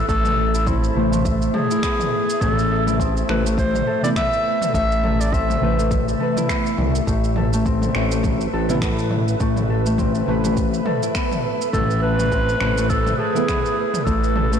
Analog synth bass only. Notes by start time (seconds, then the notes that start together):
0.09 A1
0.96 A1
2.41 A1
3.29 A1
4.74 A1
5.62 A1
6.78 C2
7.07 A1
7.95 A1
8.53 A1
9.40 A1
10.28 A1
11.73 A1
12.61 A1
14.06 A1